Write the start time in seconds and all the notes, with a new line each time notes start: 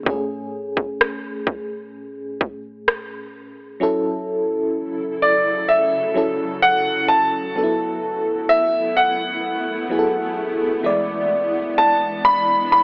0.03 A2 A3, kick
0.07 C#4 G#4
0.77 kick
1.01 cross-stick
1.47 kick
2.41 kick
2.88 cross-stick
3.80 C#3 F#3 C#4 E4 A4
5.22 D5
5.69 F#4 E5
6.14 F#3 C#4 E4 A4
6.62 F#5
7.08 A5
7.55 F#2 F#3 A3 B3 D4 E4 A4
7.64 E4
8.49 E5
8.97 F#5
9.89 F#3 B3 E4 G#4
9.99 A4
10.83 E3 G#3 D4 E4 D5
11.78 A5
12.25 B5
12.72 B5